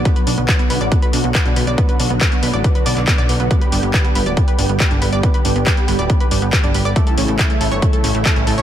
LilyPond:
<<
  \new Staff \with { instrumentName = "Synth pluck" } { \time 4/4 \key b \minor \tempo 4 = 139 b16 b'16 d'16 b16 b'16 b16 b'16 d''16 b16 b'16 d'16 b16 b'16 d'16 b'16 d''16 | b16 b'16 d'16 b16 b'16 b16 b'16 d''16 b16 b'16 d''16 d''16 b16 d''16 b16 b16 | b16 b'16 d'16 b16 b'16 b16 b'16 d''16 b16 b'16 d'16 b16 b'16 d'16 b'16 d''16 | b16 b'16 d'16 b16 b'16 b16 b'16 d''16 b16 b'16 d'16 b16 b'16 d'16 b'16 d''16 |
a16 a'16 cis'16 a16 a'16 a16 a'16 cis''16 a16 a'16 cis'16 a16 a'16 cis'16 a'16 cis''16 | }
  \new Staff \with { instrumentName = "Analog synth pad" } { \time 4/4 \key b \minor << { <fis b fis'>1~ | <fis b fis'>1 | <g b g'>1~ | <g b g'>1 |
<e a e'>1 | } \\ { d1~ | d1~ | d1~ | d1 |
cis1 | } >> }
  \new Staff \with { instrumentName = "Analog synth bass" } { \clef bass \time 4/4 \key b \minor r8 b,,16 b,,16 r8 b,,16 a,,16 r8 b,,16 b,,16 r16 b,,16 b,,16 b,,16 | r8 b,,16 b,,16 r8 b,,16 a,,16 r8 b,,16 b,,16 r16 b,,16 b,,16 b,,16 | r8 g,,16 g,,16 r8 g,,16 d,,16 r8 g,,16 g,,16 r16 g,,16 g,,16 g,,16 | r8 g,,16 g,,16 r8 g,,16 d,,16 r8 g,,16 g,,16 r16 g,,16 g,,16 g,,16 |
r8 a,,16 a,,16 r8 a,,16 g,,16 r8 a,,16 a,,16 r16 a,,16 a,,16 a,,16 | }
  \new DrumStaff \with { instrumentName = "Drums" } \drummode { \time 4/4 <hh bd>16 hh16 hho16 hh16 <hc hh bd>16 hh16 hho16 hh16 <hh bd>16 hh16 hho16 hh16 <hc hh bd>16 hh16 hho16 hh16 | <hh bd>16 hh16 hho16 hh16 <hc hh bd>16 hh16 hho16 hh16 <hh bd>16 hh16 hho16 <hc hh>16 <hc hh bd>16 hh16 hho16 hh16 | <hh bd>16 hh16 hho16 hh16 <hc hh bd>16 hh16 hho16 hh16 <hh bd>16 hh16 hho16 hh16 <hc hh bd>16 hh16 hho16 hh16 | <hh bd>16 hh16 hho16 hh16 <hc hh bd>16 hh16 hho16 hh16 <hh bd>16 hh16 hho16 hh16 <hc hh bd>16 hh16 hho16 hh16 |
<hh bd>16 hh16 hho16 hh16 <hc hh bd>16 hh16 hho16 hh16 <hh bd>16 hh16 hho16 hh16 <hc hh bd>16 hh16 hho16 hh16 | }
>>